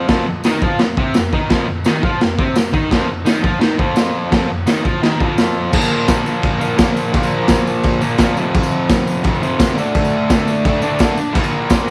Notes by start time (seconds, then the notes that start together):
0.08 F2 F3, kick, snare, crash
0.26 F2
0.44 D#3 D#4, snare, tambourine, crash
0.62 F3 F4, kick
0.79 F2, snare, crash
0.97 C3 C4, kick
1.14 F2, snare, tambourine, crash
1.33 D#3 D#4, kick
1.50 F2 F3, kick, snare, crash
1.67 F2
1.84 D#3 D#4, snare, tambourine, crash
2.03 F3 F4, kick
2.21 F2, snare, crash
2.39 C3 C4, kick
2.56 F2, snare, tambourine, crash
2.73 D#3 D#4, kick
2.91 F2 F3, kick, snare, crash
3.09 F2
3.25 D#3 D#4, snare, tambourine, crash
3.43 F3 F4, kick
3.60 D#3 D#4, snare, crash
3.77 F2 F3, kick
3.96 snare, tambourine, crash
4.31 F2 F3, kick, snare, crash
4.49 F2
4.66 D#3 D#4, snare, tambourine, crash
4.84 F3 F4, kick
5.02 D#3 D#4, snare, crash
5.19 F2 F3, kick
5.38 snare, tambourine, crash
5.71 A#2 F3 A#3, kick, crash, tambourine
5.82 tambourine
6.08 kick, snare, tambourine, crash
6.17 tambourine
6.26 tambourine
6.43 kick, tambourine, crash
6.59 A#2 F3 A#3, tambourine
6.77 A#2 F3 A#3, kick, snare, tambourine, crash
6.97 tambourine
7.13 A#2 F3 A#3, kick, tambourine, crash
7.23 tambourine
7.32 tambourine
7.48 kick, snare, tambourine, crash
7.67 tambourine
7.83 kick, tambourine, crash
7.93 tambourine
8.01 A#2 F3 A#3, tambourine
8.18 A#2 F3, kick, snare, tambourine, crash
8.22 A#3
8.36 F2 C3 F3, tambourine
8.54 kick, tambourine, crash
8.63 tambourine
8.72 tambourine
8.89 kick, snare, tambourine, crash
8.99 tambourine
9.07 tambourine
9.24 F2 C3 F3, kick, crash
9.35 tambourine
9.42 F2 C3 F3, tambourine
9.59 kick, snare, tambourine, crash
9.76 D3 A3 D4, tambourine
9.95 kick, tambourine, crash
10.05 tambourine
10.30 kick, snare, tambourine, crash
10.48 tambourine
10.65 D3 A3 D4, kick, tambourine, crash
10.82 D3 A3 D4, tambourine
10.99 kick, snare, tambourine, crash
11.17 tambourine
11.33 A#2 F3 A#3, kick, tambourine, crash
11.44 tambourine
11.52 tambourine
11.70 kick, snare, tambourine, crash
11.80 tambourine